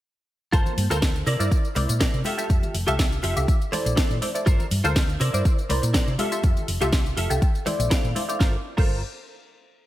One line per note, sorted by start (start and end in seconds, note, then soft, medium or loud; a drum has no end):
0.52 0.62 G1 loud
0.52 0.86 A#3 medium
0.52 0.72 F4 loud
0.52 0.85 F4 loud
0.52 0.72 A4 medium
0.52 0.72 A#4 loud
0.52 0.86 C5 loud
0.52 0.72 C5 loud
0.52 0.86 A5 medium
0.52 kick loud
0.52 closed hi-hat medium
0.52 tambourine medium
0.52 shaker soft
0.66 closed hi-hat soft
0.66 tambourine soft
0.66 low conga medium
0.78 0.87 G2 loud
0.78 open hi-hat loud
0.78 shaker loud
0.90 1.21 D2 medium
0.90 0.97 F4 loud
0.90 1.09 F4 medium
0.90 0.97 A4 medium
0.90 1.09 A4 medium
0.90 0.97 A#4 medium
0.90 1.09 A#4 medium
0.90 0.97 C5 loud
0.90 1.09 C5 medium
0.90 closed hi-hat medium
0.90 tambourine medium
0.90 high conga medium
0.90 shaker soft
1.02 kick loud
1.02 snare loud
1.02 closed hi-hat medium
1.02 tambourine medium
1.16 closed hi-hat soft
1.16 tambourine soft
1.26 1.36 C3 loud
1.26 1.67 E4 medium
1.26 1.67 A#4 medium
1.26 1.67 C5 medium
1.26 1.67 D5 loud
1.26 open hi-hat loud
1.26 shaker loud
1.39 1.48 G2 medium
1.39 1.50 E4 medium
1.39 1.50 A#4 medium
1.39 1.50 C5 medium
1.39 1.50 D5 medium
1.39 closed hi-hat medium
1.39 tambourine medium
1.39 shaker medium
1.51 kick loud
1.51 closed hi-hat medium
1.51 tambourine medium
1.51 shaker soft
1.65 closed hi-hat soft
1.65 tambourine soft
1.75 1.85 C2 loud
1.75 2.22 E4 medium
1.75 2.22 A#4 medium
1.75 2.23 C5 medium
1.75 2.23 D5 loud
1.75 muted clean electric guitar stroke loud
1.75 open hi-hat loud
1.75 high conga loud
1.75 shaker medium
1.88 2.05 A#2 medium
1.88 muted clean electric guitar stroke soft
1.88 closed hi-hat medium
1.88 tambourine medium
1.88 shaker medium
2.00 2.19 E4 medium
2.00 2.20 A#4 medium
2.00 2.20 C5 medium
2.00 2.20 D5 loud
2.00 kick loud
2.00 snare loud
2.00 closed hi-hat medium
2.00 tambourine medium
2.14 2.22 C3 medium
2.14 closed hi-hat soft
2.14 tambourine soft
2.24 2.74 F4 medium
2.24 2.32 F4 medium
2.24 2.74 G4 medium
2.24 2.33 G4 medium
2.24 2.33 A4 medium
2.24 2.75 A4 medium
2.24 2.33 E5 medium
2.24 2.75 E5 loud
2.24 open hi-hat loud
2.24 high conga medium
2.24 shaker loud
2.38 2.48 F4 medium
2.38 2.49 G4 medium
2.38 2.49 A4 medium
2.38 2.49 E5 medium
2.38 closed hi-hat medium
2.38 tambourine medium
2.38 shaker medium
2.50 2.59 F2 loud
2.50 kick loud
2.50 closed hi-hat medium
2.50 tambourine medium
2.50 shaker soft
2.63 closed hi-hat soft
2.63 tambourine soft
2.63 low conga loud
2.74 2.83 F1 loud
2.74 open hi-hat loud
2.74 shaker loud
2.87 3.18 C2 medium
2.87 3.05 F4 medium
2.87 2.94 F4 loud
2.87 2.94 G4 medium
2.87 3.06 G4 medium
2.87 2.94 A4 medium
2.87 3.06 A4 medium
2.87 2.94 E5 loud
2.87 3.06 E5 medium
2.87 closed hi-hat medium
2.87 tambourine medium
2.87 high conga medium
2.87 shaker medium
2.99 kick loud
2.99 snare loud
2.99 closed hi-hat medium
2.99 tambourine medium
3.12 closed hi-hat soft
3.12 tambourine soft
3.23 3.33 F1 loud
3.23 3.36 F4 medium
3.23 3.37 G4 medium
3.23 3.37 A4 medium
3.23 3.37 E5 loud
3.23 open hi-hat loud
3.23 shaker loud
3.36 3.45 C2 loud
3.36 3.47 F4 medium
3.36 3.47 G4 medium
3.36 3.47 A4 medium
3.36 3.47 E5 medium
3.36 closed hi-hat medium
3.36 tambourine medium
3.36 shaker soft
3.48 muted clean electric guitar stroke soft
3.48 kick loud
3.48 closed hi-hat medium
3.48 tambourine medium
3.48 shaker soft
3.62 closed hi-hat soft
3.62 tambourine soft
3.72 4.19 E4 medium
3.72 4.19 A4 medium
3.72 4.19 C5 medium
3.72 4.19 D5 loud
3.72 muted clean electric guitar stroke loud
3.72 open hi-hat loud
3.72 high conga medium
3.72 low conga medium
3.72 shaker loud
3.85 3.94 A#1 medium
3.85 muted clean electric guitar stroke soft
3.85 closed hi-hat medium
3.85 tambourine medium
3.85 shaker medium
3.96 4.16 E4 medium
3.96 4.16 A4 medium
3.96 4.16 C5 medium
3.96 4.17 D5 medium
3.96 kick loud
3.96 snare loud
3.96 closed hi-hat medium
3.96 tambourine medium
4.11 4.19 A#2 medium
4.11 closed hi-hat soft
4.11 tambourine soft
4.11 low conga medium
4.22 4.29 E4 medium
4.22 4.29 A4 medium
4.22 4.29 C5 medium
4.22 4.30 D5 medium
4.22 open hi-hat loud
4.22 high conga medium
4.22 shaker loud
4.34 4.45 E4 medium
4.34 4.45 A4 medium
4.34 4.45 C5 medium
4.34 4.45 D5 medium
4.34 muted clean electric guitar stroke soft
4.34 closed hi-hat medium
4.34 tambourine medium
4.34 shaker medium
4.46 4.56 G1 loud
4.46 4.65 F4 loud
4.46 4.66 A4 loud
4.46 4.66 A#4 loud
4.46 4.66 C5 loud
4.46 kick loud
4.46 closed hi-hat medium
4.46 tambourine medium
4.60 closed hi-hat soft
4.60 tambourine soft
4.60 low conga medium
4.71 4.80 G2 medium
4.71 open hi-hat loud
4.71 shaker medium
4.84 5.15 D2 medium
4.84 5.02 F4 medium
4.84 4.91 F4 loud
4.84 4.91 A4 loud
4.84 5.02 A4 medium
4.84 4.91 A#4 loud
4.84 5.03 A#4 medium
4.84 4.91 C5 loud
4.84 5.03 C5 medium
4.84 closed hi-hat medium
4.84 tambourine medium
4.84 high conga medium
4.84 shaker medium
4.96 kick loud
4.96 snare loud
4.96 closed hi-hat medium
4.96 tambourine medium
5.09 closed hi-hat soft
5.09 tambourine soft
5.20 5.30 C3 loud
5.20 5.60 E4 loud
5.20 5.61 A#4 medium
5.20 5.61 C5 medium
5.20 5.61 D5 medium
5.20 open hi-hat loud
5.20 shaker medium
5.33 5.42 G2 medium
5.33 5.44 E4 medium
5.33 5.44 A#4 medium
5.33 5.44 C5 medium
5.33 5.44 D5 medium
5.33 closed hi-hat soft
5.33 tambourine medium
5.33 shaker soft
5.45 kick loud
5.45 closed hi-hat medium
5.45 tambourine medium
5.45 shaker soft
5.59 closed hi-hat soft
5.59 tambourine soft
5.69 5.79 C2 loud
5.69 6.16 E4 medium
5.69 6.16 A#4 medium
5.69 6.16 C5 medium
5.69 6.16 D5 loud
5.69 muted clean electric guitar stroke loud
5.69 open hi-hat loud
5.69 high conga loud
5.69 shaker medium
5.82 5.99 A#2 medium
5.82 muted clean electric guitar stroke soft
5.82 closed hi-hat medium
5.82 tambourine medium
5.82 shaker medium
5.94 6.13 E4 medium
5.94 6.13 A#4 medium
5.94 6.13 C5 medium
5.94 6.14 D5 medium
5.94 kick loud
5.94 snare loud
5.94 closed hi-hat medium
5.94 tambourine medium
6.07 6.15 C3 loud
6.07 closed hi-hat soft
6.07 tambourine soft
6.18 6.26 F4 medium
6.18 6.68 F4 medium
6.18 6.26 G4 medium
6.18 6.68 G4 medium
6.18 6.26 A4 medium
6.18 6.68 A4 medium
6.18 6.26 E5 medium
6.18 6.69 E5 medium
6.18 open hi-hat loud
6.18 high conga loud
6.18 shaker medium
6.32 6.42 F4 medium
6.32 6.42 G4 medium
6.32 6.42 A4 medium
6.32 6.42 E5 medium
6.32 closed hi-hat medium
6.32 tambourine medium
6.32 shaker medium
6.44 6.53 F2 loud
6.44 kick loud
6.44 closed hi-hat medium
6.44 tambourine medium
6.44 shaker soft
6.57 closed hi-hat soft
6.57 tambourine soft
6.57 low conga medium
6.68 6.77 F1 loud
6.68 open hi-hat loud
6.68 shaker medium
6.81 7.11 C2 medium
6.81 6.99 F4 medium
6.81 6.88 F4 loud
6.81 6.99 G4 medium
6.81 6.88 G4 medium
6.81 6.99 A4 medium
6.81 6.88 A4 medium
6.81 7.00 E5 medium
6.81 6.88 E5 loud
6.81 closed hi-hat medium
6.81 tambourine medium
6.81 high conga medium
6.81 shaker soft
6.93 kick loud
6.93 snare loud
6.93 closed hi-hat medium
6.93 tambourine medium
7.06 closed hi-hat soft
7.06 tambourine soft
7.17 7.26 F1 loud
7.17 7.30 F4 medium
7.17 7.30 G4 medium
7.17 7.31 A4 medium
7.17 7.31 E5 medium
7.17 open hi-hat loud
7.17 shaker medium
7.30 7.38 C2 medium
7.30 7.40 F4 medium
7.30 7.40 G4 medium
7.30 7.41 A4 medium
7.30 7.41 E5 medium
7.30 closed hi-hat medium
7.30 tambourine medium
7.30 shaker soft
7.41 muted clean electric guitar stroke soft
7.41 kick loud
7.41 closed hi-hat medium
7.41 tambourine medium
7.41 shaker soft
7.55 closed hi-hat soft
7.55 tambourine soft
7.66 8.13 E4 medium
7.66 8.13 A4 medium
7.66 8.13 C5 medium
7.66 8.13 D5 loud
7.66 muted clean electric guitar stroke loud
7.66 open hi-hat loud
7.66 high conga loud
7.66 low conga loud
7.66 shaker medium
7.79 7.87 A#1 medium
7.79 muted clean electric guitar stroke soft
7.79 closed hi-hat medium
7.79 tambourine medium
7.79 shaker medium
7.90 8.10 E4 medium
7.90 8.10 A4 medium
7.90 8.10 C5 medium
7.90 8.10 D5 loud
7.90 8.37 F5 medium
7.90 kick loud
7.90 snare loud
7.90 closed hi-hat medium
7.90 tambourine medium
8.04 8.12 A#2 loud
8.04 closed hi-hat soft
8.04 tambourine soft
8.04 low conga medium
8.15 8.23 E4 medium
8.15 8.23 A4 medium
8.15 8.23 C5 medium
8.15 8.23 D5 medium
8.15 open hi-hat loud
8.15 high conga loud
8.15 shaker medium
8.28 8.39 E4 medium
8.28 8.38 A4 medium
8.28 8.39 C5 medium
8.28 8.39 D5 medium
8.28 muted clean electric guitar stroke soft
8.28 closed hi-hat soft
8.28 tambourine medium
8.28 shaker medium
8.39 8.55 G1 loud
8.39 8.54 F4 medium
8.39 8.55 F4 medium
8.39 8.54 A4 medium
8.39 8.55 A4 medium
8.39 8.55 A#4 medium
8.39 8.55 C5 medium
8.39 8.55 C5 loud
8.39 kick loud
8.39 snare medium
8.77 9.01 G1 loud
8.77 8.95 F4 medium
8.77 9.01 F4 medium
8.77 8.96 A4 medium
8.77 9.01 A4 medium
8.77 9.01 A#4 medium
8.77 8.96 A#4 medium
8.77 9.01 C5 loud
8.77 8.97 C5 loud
8.77 kick loud
8.77 crash medium